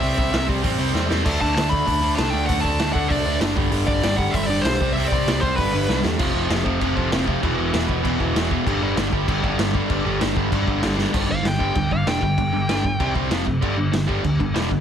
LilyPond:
<<
  \new Staff \with { instrumentName = "Lead electric guitar" } { \time 4/4 \key g \major \tempo 4 = 194 e''4. r2 r8 | r8 a''8 a''8 b''4. a''8 g''8 | fis''8 a''4 fis''8 d''4 r4 | r8 d''4 fis''8 e''8 d''8 c''4 |
e''8 d''4 c''8 b'4. r8 | \key g \mixolydian r1 | r1 | r1 |
r1 | \key c \lydian r8 f''8 g''4. f''8 g''8 g''8~ | g''2~ g''8 r4. | r1 | }
  \new Staff \with { instrumentName = "Overdriven electric guitar" } { \clef bass \time 4/4 \key g \major <c g c'>8 <c g c'>8 <c g c'>8 <c g c'>8 <c g c'>8 <c g c'>8 <c g c'>8 <c g c'>8 | <d a d'>8 <d a d'>8 <d a d'>8 <d a d'>8 <d a d'>8 <d a d'>8 <d a d'>8 <d a d'>8 | <d a d'>8 <d a d'>8 <d a d'>8 <d a d'>8 <d a d'>8 <d a d'>8 <d a d'>8 <g, d g>8 | <g, d g>8 <g, d g>8 <g, d g>8 <g, d g>8 <g, d g>8 <g, d g>8 <g, d g>8 <c g c'>8 |
<c g c'>8 <c g c'>8 <c g c'>8 <c g c'>8 <g, d g>8 <g, d g>8 <g, d g>8 <g, d g>8 | \key g \mixolydian <f, c f>8 <f, c f>8 <f, c f>8 <f, c f>8 <f, c f>8 <f, c f>8 <f, c f>8 <f, c f>8 | <e, b, e>8 <e, b, e>8 <e, b, e>8 <e, b, e>8 <e, b, e>8 <e, b, e>8 <e, b, e>8 <e, b, e>8 | <g, d g>8 <g, d g>8 <g, d g>8 <g, d g>8 <g, d g>8 <g, d g>8 <g, d g>8 <g, d g>8 |
<g, d g>8 <g, d g>8 <g, d g>8 <g, d g>8 <g, d g>8 <g, d g>8 <g, d g>8 <g, d g>8 | \key c \lydian <g, d g>8 <g, d>8 <g, d>8 <g, d g>8 <g, d>8 <g, d>8 <g, d g>8 <g, d>8 | <g, d>8 <g, d>8 <g, d g>8 <g, d>8 <c g c'>8 <c g c'>8 <f, c f>8 <f, c>8 | <g, d g>8 <g, d>8 <g, d>8 <g, d g>8 <g, d>8 <g, d>8 <g, d g>8 <g, d>8 | }
  \new Staff \with { instrumentName = "Picked electric bass" } { \clef bass \time 4/4 \key g \major c,8 c,8 c,8 c,8 a,,8 c,8 e,8 e,8 | d,8 d,8 d,4 d,4 c,8 d,8 | d,8 d,8 d,8 d,8 c,8 d,8 fis,,8 g,,8 | g,,8 g,,8 g,,4 g,,4 b,,8 c,8 |
c,8 c,8 c,8 c,8 g,,8 g,,8 c,8 e,8 | \key g \mixolydian f,,8 f,,8 f,,8 f,,8 f,,8 f,,8 f,,4 | e,,8 e,,8 e,,8 e,,8 e,,8 e,,8 e,,4 | g,,8 g,,8 g,,8 g,,8 g,,8 g,,8 g,,4 |
g,,8 g,,8 g,,8 g,,8 g,,8 g,,8 g,,4 | \key c \lydian g,,8 g,,8 g,,4 d,8 g,,8 e,,8 g,,8 | g,,8 g,,8 g,,4 c,8 c,8 f,,8 fis,,8 | g,,8 g,,8 g,,4 d,8 g,,8 e,,8 g,,8 | }
  \new DrumStaff \with { instrumentName = "Drums" } \drummode { \time 4/4 hho8 bd8 <hho sn>8 bd8 <hho bd>4 sn8 sn8 | <cymc hho bd>8 bd8 <hho sn>8 bd8 <hho bd>4 <hho sn>4 | <hho bd>8 bd8 <hho sn>8 bd8 <hho bd>4 <hho sn>8 bd8 | hho8 bd8 <hho sn>8 bd8 <hho bd>4 <hho sn>8 bd8 |
hho8 bd8 <hho sn>8 bd8 <hho bd>4 sn8 sn8 | <cymc bd>4 <cymc sn>8 bd8 <cymc bd>8 bd8 <cymc sn>8 bd8 | <cymc bd>4 <cymc sn>8 bd8 <cymc bd>8 bd8 <cymc sn>8 bd8 | <cymc bd>4 <cymc sn>8 bd8 <cymc bd>8 bd8 <cymc sn>8 bd8 |
<cymc bd>4 <cymc sn>8 bd8 <cymc bd>8 bd8 <cymc sn>8 sn8 | <cymc bd>4 <cymc sn>8 bd8 <cymc bd>8 bd8 <cymc sn>8 bd8 | <cymc bd>4 <cymc sn>8 bd8 <cymc bd>8 bd8 <cymc sn>8 bd8 | <cymc bd>4 <cymc sn>8 bd8 <cymc bd>8 bd8 <cymc sn>8 bd8 | }
>>